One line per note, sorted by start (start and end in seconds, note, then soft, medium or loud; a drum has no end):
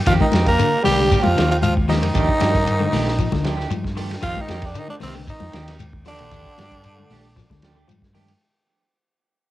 0.06 0.19 F2 loud
0.06 0.23 D#3 loud
0.06 0.24 D#3 medium
0.06 0.14 F3 medium
0.06 0.24 A#3 medium
0.06 0.24 C4 medium
0.06 0.13 F4 loud
0.06 0.24 G4 medium
0.06 kick loud
0.06 snare soft
0.06 ride bell medium
0.06 shekere medium
0.19 0.44 D#3 medium
0.19 0.45 D#4 medium
0.19 kick medium
0.19 high conga medium
0.32 0.56 F2 loud
0.32 0.49 D#3 medium
0.32 0.50 A#3 medium
0.32 0.50 C4 medium
0.32 0.50 G4 medium
0.32 snare medium
0.32 ride bell medium
0.32 high conga loud
0.32 shekere soft
0.45 0.82 A#3 medium
0.45 0.82 A#3 loud
0.45 0.83 A#4 loud
0.45 kick medium
0.45 snare soft
0.45 ride bell medium
0.59 0.75 D3 medium
0.59 ride bell medium
0.59 shekere medium
0.83 1.08 C2 medium
0.83 0.94 D#3 medium
0.83 1.02 D#3 medium
0.83 1.21 G3 medium
0.83 1.23 G3 medium
0.83 1.02 A#3 medium
0.83 1.02 C4 medium
0.83 1.25 G4 loud
0.83 open hi-hat medium
0.83 high conga medium
0.83 low conga medium
0.83 shekere soft
0.87 1.02 G4 medium
0.99 1.15 D3 medium
1.11 1.27 D#3 medium
1.11 1.28 A#3 medium
1.11 1.27 C4 medium
1.11 1.28 G4 medium
1.11 kick medium
1.11 ride bell medium
1.11 shekere medium
1.22 1.49 F3 medium
1.22 1.46 F3 medium
1.22 1.50 F4 loud
1.22 high conga loud
1.26 1.36 F2 medium
1.36 2.04 D#2 loud
1.36 1.53 D#3 medium
1.36 1.54 A#3 medium
1.36 1.54 C4 medium
1.36 1.54 G4 medium
1.36 snare medium
1.36 ride bell medium
1.36 low conga medium
1.36 shekere soft
1.47 1.53 F3 medium
1.47 1.56 F3 medium
1.51 1.57 F4 medium
1.51 ride bell medium
1.61 1.73 F3 medium
1.61 1.75 F3 medium
1.61 1.74 F4 loud
1.61 ride bell medium
1.61 high conga medium
1.61 shekere loud
1.77 kick medium
1.86 3.92 D#3 medium
1.86 3.93 D#3 medium
1.86 2.05 D#3 medium
1.86 1.97 F3 medium
1.86 2.05 A#3 medium
1.86 2.06 C4 medium
1.86 3.93 D#4 loud
1.86 2.05 G4 medium
1.86 high conga medium
1.86 low conga medium
1.86 shekere soft
1.90 snare soft
1.90 open hi-hat medium
2.02 2.14 F2 medium
2.02 2.18 D#3 medium
2.02 ride bell medium
2.14 2.27 D#2 loud
2.14 2.31 F3 medium
2.14 2.31 A3 medium
2.14 2.31 D4 medium
2.14 2.31 G4 medium
2.14 kick loud
2.14 ride bell medium
2.14 shekere medium
2.29 kick medium
2.40 2.86 G2 medium
2.40 2.57 F3 medium
2.40 2.57 A3 medium
2.40 2.57 D4 medium
2.40 2.57 G4 medium
2.40 snare medium
2.40 ride bell medium
2.40 high conga loud
2.40 shekere soft
2.55 kick medium
2.55 snare soft
2.55 ride bell medium
2.67 ride bell soft
2.67 shekere medium
2.80 2.97 D3 medium
2.80 high conga medium
2.92 3.27 A#1 loud
2.92 3.09 F3 medium
2.92 3.09 A3 medium
2.92 3.09 D4 medium
2.92 3.10 G4 medium
2.92 open hi-hat medium
2.92 high conga medium
2.92 low conga medium
2.92 shekere soft
3.08 snare soft
3.18 3.28 F3 medium
3.18 kick medium
3.18 ride bell medium
3.18 shekere medium
3.32 3.65 D2 medium
3.32 3.49 D3 medium
3.32 kick medium
3.32 snare soft
3.32 high conga loud
3.44 3.58 F3 medium
3.44 3.57 A3 medium
3.44 3.56 D4 medium
3.44 3.56 G4 medium
3.44 snare medium
3.44 ride bell medium
3.44 shekere soft
3.57 3.73 A3 soft
3.57 3.73 D4 soft
3.57 3.73 G4 medium
3.57 muted clean electric guitar stroke medium
3.57 snare soft
3.70 4.16 G2 loud
3.70 3.87 F3 medium
3.70 ride bell medium
3.70 high conga medium
3.70 shekere loud
3.84 kick medium
3.84 snare soft
3.96 4.13 D#3 medium
3.96 4.13 F3 medium
3.96 4.13 A3 medium
3.96 4.13 D4 medium
3.96 4.13 G4 medium
3.96 open hi-hat medium
3.96 low conga medium
3.96 shekere soft
4.11 snare soft
4.11 ride bell soft
4.22 4.35 F2 loud
4.22 4.38 D#3 loud
4.22 4.39 D#3 medium
4.22 4.42 F3 loud
4.22 4.37 F3 loud
4.22 4.39 A#3 medium
4.22 4.39 C4 medium
4.22 4.43 F4 loud
4.22 4.39 G4 medium
4.22 kick loud
4.22 ride bell medium
4.22 low conga medium
4.22 shekere medium
4.36 4.64 D#3 loud
4.36 4.68 D#3 medium
4.36 kick medium
4.36 high conga medium
4.41 4.67 D#4 loud
4.48 4.72 F2 medium
4.48 4.65 D#3 medium
4.48 4.65 A#3 medium
4.48 4.66 C4 medium
4.48 4.66 G4 medium
4.48 snare medium
4.48 ride bell medium
4.48 high conga loud
4.48 shekere soft
4.62 4.80 D4 medium
4.62 kick medium
4.62 snare soft
4.62 ride bell medium
4.66 4.79 D3 medium
4.66 4.77 D3 medium
4.74 4.91 D3 medium
4.74 4.90 D#3 medium
4.74 4.89 D#4 loud
4.74 ride bell soft
4.74 shekere medium
4.80 4.91 D#3 medium
4.88 4.95 D3 medium
4.88 4.95 D4 medium
4.88 high conga medium
4.93 4.97 D3 medium
5.00 5.24 C2 loud
5.00 5.09 D#3 medium
5.00 5.18 D#3 medium
5.00 5.18 A#3 medium
5.00 5.14 C4 medium
5.00 5.19 C4 medium
5.00 5.18 G4 medium
5.00 open hi-hat medium
5.00 high conga medium
5.00 low conga medium
5.00 shekere soft
5.05 5.16 C3 medium
5.15 5.31 D3 medium
5.28 5.78 D#3 medium
5.28 5.77 D#4 loud
5.28 kick medium
5.28 ride bell medium
5.28 shekere medium
5.32 5.79 D#3 medium
5.40 5.52 F2 medium
5.40 high conga loud
5.53 6.22 D#2 loud
5.53 5.67 D#3 medium
5.53 5.69 D#3 medium
5.53 5.67 A#3 medium
5.53 5.67 C4 medium
5.53 5.67 G4 medium
5.53 snare medium
5.53 ride bell medium
5.53 low conga medium
5.53 shekere soft
5.68 5.83 A#3 soft
5.68 5.83 C4 soft
5.68 5.83 G4 medium
5.68 snare soft
5.68 ride bell medium
5.79 ride bell medium
5.79 high conga medium
5.79 shekere loud
5.93 kick medium
6.05 7.84 D3 loud
6.05 7.85 D3 loud
6.05 6.22 D#3 medium
6.05 6.14 F3 medium
6.05 6.23 A#3 medium
6.05 6.23 C4 medium
6.05 7.85 D4 loud
6.05 6.23 G4 medium
6.05 open hi-hat medium
6.05 low conga medium
6.05 shekere soft
6.19 6.30 A#1 medium
6.19 6.35 D#3 medium
6.19 ride bell medium
6.31 6.43 D#2 loud
6.31 6.48 F3 medium
6.31 6.48 A3 medium
6.31 6.48 D4 medium
6.31 6.48 G4 medium
6.31 kick loud
6.31 ride bell medium
6.31 low conga medium
6.31 shekere medium
6.45 kick medium
6.58 7.03 G2 medium
6.58 6.74 F3 medium
6.58 6.75 A3 medium
6.58 6.75 D4 medium
6.58 6.75 G4 medium
6.58 snare medium
6.58 ride bell medium
6.58 high conga loud
6.58 shekere soft
6.71 kick medium
6.71 ride bell medium
6.84 ride bell medium
6.84 shekere medium
6.99 7.14 D3 medium
6.99 high conga medium
7.10 7.44 A#1 loud
7.10 7.26 A3 medium
7.10 7.26 D4 medium
7.10 7.27 G4 medium
7.10 muted clean electric guitar stroke medium
7.10 open hi-hat medium
7.10 high conga medium
7.10 low conga medium
7.10 shekere soft
7.36 7.45 F3 medium
7.36 kick medium
7.36 snare soft
7.36 ride bell medium
7.36 shekere medium
7.50 7.83 D2 medium
7.50 7.66 D3 medium
7.50 kick medium
7.50 snare soft
7.50 high conga loud
7.62 7.76 F3 medium
7.62 7.77 A3 medium
7.62 7.77 D4 medium
7.62 7.75 G4 medium
7.62 snare medium
7.62 ride bell medium
7.62 low conga medium
7.62 shekere soft
7.76 7.84 D3 medium
7.76 7.92 A3 soft
7.76 7.92 D4 medium
7.76 7.91 G4 soft
7.88 8.33 G2 loud
7.88 8.04 F3 medium
7.88 ride bell medium
7.88 high conga medium
7.88 shekere medium
8.02 kick medium
8.02 snare soft
8.13 8.30 D#3 medium
8.13 8.30 F3 medium
8.13 8.30 A3 medium
8.13 8.30 D4 medium
8.13 8.30 G4 medium
8.13 open hi-hat medium
8.13 high conga medium
8.13 low conga medium
8.13 shekere soft
8.28 ride bell soft